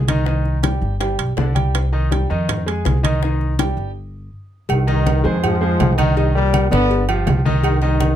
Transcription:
Already playing: upright bass C2
0.08 grand piano D#3 D#4 D#5, high conga, high timbale
0.26 grand piano D#3 D#4 D#5, high bongo, high conga
0.45 high bongo, high conga
0.63 grand piano G3 G4 G5, high bongo, high conga, high timbale
0.81 upright bass G1, high bongo, high conga
1.00 grand piano G3 G4 G5, high bongo, high conga, high timbale
1.19 upright bass B1, high conga, high timbale
1.37 upright bass C2, grand piano D3 D4 D5, high bongo, low bongo, high conga, low timbale
1.55 grand piano G3 G4 G5, high bongo, high conga, high timbale
1.74 high bongo, high conga, high timbale
1.93 grand piano D#3 D#4 D#5, high conga
2.11 grand piano G3 G4 G5, high bongo, high conga, high timbale
2.30 upright bass F2, grand piano D#3 D#4 D#5, high conga
2.49 high bongo, high conga, low conga, high timbale
2.66 grand piano G#3 G#4 G#5, high conga, high timbale
2.85 upright bass C2, high bongo, low bongo, high conga, high timbale
3.03 grand piano D#3 D#4 D#5, high conga, high timbale
3.22 grand piano D#3 D#4 D#5, high bongo, high conga
3.41 high bongo, high conga
3.59 grand piano G3 G4 G5, high bongo, high conga, high timbale
3.77 upright bass G1, high bongo, high conga
4.69 upright bass C2, trombone section G2 D#3, cowbell, high conga, low agogo
4.87 trombone section G2 D#3, grand piano D#3 D#4 D#5, cowbell, high conga
5.06 cowbell, high conga, low timbale, low agogo
5.24 upright bass F2, grand piano G#3 G#4 C5, high conga
5.42 trombone section G#2 F3, cowbell, high conga, low conga, low agogo
5.61 grand piano G#3 G#4 C5, high conga
5.80 upright bass C2, cowbell, high conga, low timbale, low agogo
5.97 trombone section G2 D#3, grand piano D#3 D#4 D#5, cowbell, high conga, low agogo
6.17 grand piano D#3 D#4 D#5, cowbell, high conga
6.34 trombone section A#2 G3, grand piano G3 G4 A#4, high conga
6.54 cowbell, high conga, low timbale, low agogo
6.70 upright bass G1, grand piano D3 D4 D5, trombone section D3 B3, high conga, low agogo
6.91 cowbell, high conga
7.09 grand piano F3 F4 G4, high conga, low agogo
7.26 upright bass C2, cowbell, high conga, low timbale, low agogo
7.45 grand piano D#3 D#4 D#5, high conga
7.63 trombone section G2 D#3, cowbell, low agogo
7.81 trombone section G2 D#3, grand piano D#3 D#4 D#5, cowbell, high conga
8.00 cowbell, high conga, low timbale, low agogo

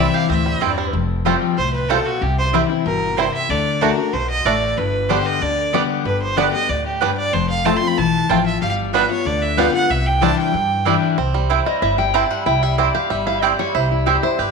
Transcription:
Already playing: steel-string acoustic guitar C3 E3 G3 C4, five-string banjo G3 C4 E4, fiddle E5
0.00 steel-string acoustic guitar E4
0.14 five-string banjo G4, fiddle F5
0.29 upright bass D2, steel-string acoustic guitar A2, five-string banjo C4, fiddle E5
0.46 five-string banjo G3
0.61 upright bass E2, steel-string acoustic guitar G2, mandolin C4 E4 C5 G5, five-string banjo C4
0.78 five-string banjo G3
0.93 upright bass F1, steel-string acoustic guitar F2
1.25 steel-string acoustic guitar F3 G3 C4 G4, five-string banjo G3 C4 F4, mandolin A3 F4 C5 G5
1.58 upright bass C2, steel-string acoustic guitar A2, fiddle C5
1.73 fiddle B4
1.89 steel-string acoustic guitar B2, five-string banjo G3 C4 F4, mandolin A3 F4 C5 G5, fiddle A4
2.06 fiddle F#4
2.21 upright bass C2, steel-string acoustic guitar C3, fiddle G4
2.38 fiddle C5
2.53 steel-string acoustic guitar E3 G3 C4 E4, five-string banjo G3 C4 E4, mandolin C4 E4 C5 G5
2.69 steel-string acoustic guitar C4 E4
2.86 upright bass G1, steel-string acoustic guitar B2, fiddle A#4
3.17 steel-string acoustic guitar C3, five-string banjo G3 C4 E4, mandolin C4 E4 C5 G5, fiddle C5
3.34 fiddle E5
3.49 upright bass D2, steel-string acoustic guitar D3, fiddle D5
3.81 steel-string acoustic guitar D3 A3 D4 F#4, mandolin A3 F#4 D5 A5, five-string banjo A3 D4, fiddle A#4
3.97 steel-string acoustic guitar D4 F#4
4.13 upright bass B1, steel-string acoustic guitar B2, fiddle C5
4.30 fiddle D#5
4.45 upright bass A1, steel-string acoustic guitar A2, mandolin A3 F#4 D5 A5, five-string banjo A3 D4, fiddle D5
4.78 upright bass G1, steel-string acoustic guitar G2, fiddle B4
5.09 steel-string acoustic guitar D3 G3 B3 G4, five-string banjo G3 B3 D4, mandolin B3 G4 D5 G5, fiddle C5
5.26 fiddle D#5
5.41 upright bass D2, steel-string acoustic guitar D3, fiddle D5
5.73 steel-string acoustic guitar D3 G3 B3 G4, five-string banjo G3 B3 D4, mandolin B3 G4 D5 G5
6.05 upright bass G1, steel-string acoustic guitar G2, fiddle B4
6.22 fiddle C5
6.36 steel-string acoustic guitar D3 G3 B3 G4, five-string banjo G3 B3 D4, mandolin B3 G4 D5 G5, fiddle D5
6.52 steel-string acoustic guitar B3 G4, fiddle D#5
6.69 upright bass D2, steel-string acoustic guitar A2, fiddle D5
6.86 fiddle G4
7.01 steel-string acoustic guitar G2, five-string banjo G3 B3 D4, mandolin B3 G4 D5 G5, fiddle B4
7.18 fiddle D5
7.33 upright bass F1, steel-string acoustic guitar F2, fiddle C5
7.50 fiddle F5
7.65 steel-string acoustic guitar F3 A3 C4 F4, five-string banjo A3 C4 F4, mandolin C4 F4 C5 A5, fiddle A5
7.77 fiddle C6
7.81 steel-string acoustic guitar C4 F4
7.88 fiddle B5
7.97 upright bass B1, steel-string acoustic guitar E3, fiddle A5
8.29 upright bass A1, steel-string acoustic guitar F3, five-string banjo A3 C4 F4, mandolin C4 F4 C5 A5, fiddle G5
8.46 fiddle E5
8.62 upright bass G1, steel-string acoustic guitar G3, fiddle F5
8.93 steel-string acoustic guitar G3 B3 F4, five-string banjo G3 B3 D4, mandolin B3 F4 B4 G5, fiddle E5
9.09 steel-string acoustic guitar B3 F4, fiddle C#5
9.25 upright bass D2, steel-string acoustic guitar D3, fiddle D5
9.42 fiddle E5
9.57 steel-string acoustic guitar G3 B3 F4, five-string banjo G3 B3 D4, mandolin B3 F4 B4 G5, fiddle F5
9.73 steel-string acoustic guitar B3 F4, fiddle F#5
9.89 upright bass C2, steel-string acoustic guitar C3, fiddle E5
10.06 fiddle G5
10.21 steel-string acoustic guitar E3 G3 D4 E4, five-string banjo G3 C4 D4, mandolin C4 E4 D5 G5, fiddle A5
10.39 fiddle G5
10.54 upright bass G2, steel-string acoustic guitar G2
10.85 steel-string acoustic guitar E3 G3 D4 E4, five-string banjo G3 C4 D4, mandolin C4 E4 D5 G5
11.18 upright bass C2, five-string banjo C4
11.34 five-string banjo G3
11.50 mandolin C4 E4 C5 G5, five-string banjo E4
11.66 five-string banjo G3, steel-string acoustic guitar D#5
11.82 upright bass G1, five-string banjo E4, steel-string acoustic guitar E5
11.98 five-string banjo G3, steel-string acoustic guitar G5
12.14 mandolin C4 E4 C5 G5, five-string banjo E4, steel-string acoustic guitar A5
12.30 five-string banjo G3, steel-string acoustic guitar F#5
12.46 upright bass C2, five-string banjo E4, steel-string acoustic guitar G5
12.62 five-string banjo G3, steel-string acoustic guitar E5
12.78 mandolin C4 E4 C5 G5, five-string banjo E4, steel-string acoustic guitar D5
12.95 five-string banjo G4, steel-string acoustic guitar F5
13.10 upright bass G1, five-string banjo G3, steel-string acoustic guitar E5
13.27 five-string banjo E4, steel-string acoustic guitar F5
13.42 mandolin C4 E4 C5 G5, five-string banjo G4, steel-string acoustic guitar D5
13.59 five-string banjo G3, steel-string acoustic guitar C#5
13.75 upright bass C2, five-string banjo E4, steel-string acoustic guitar C5
13.91 steel-string acoustic guitar E4
14.06 mandolin C4 E4 C5 G5, steel-string acoustic guitar G4, five-string banjo G4
14.23 five-string banjo E4, steel-string acoustic guitar C5
14.39 upright bass G1, five-string banjo G4, steel-string acoustic guitar B4

